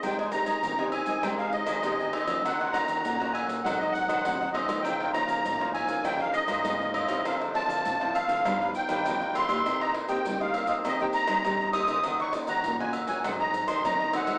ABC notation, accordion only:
X:1
M:4/4
L:1/16
Q:1/4=100
K:Ab
V:1 name="Accordion"
g2 b4 a2 g f e4 e2 | _g2 b4 a2 g e g4 e2 | g2 b4 a2 g f e4 e2 | f2 =a4 f4 g4 c'2- |
c' b2 g2 f2 f e g b4 e'2- | e' d'2 b2 a2 a _g b2 c' b2 g2 |]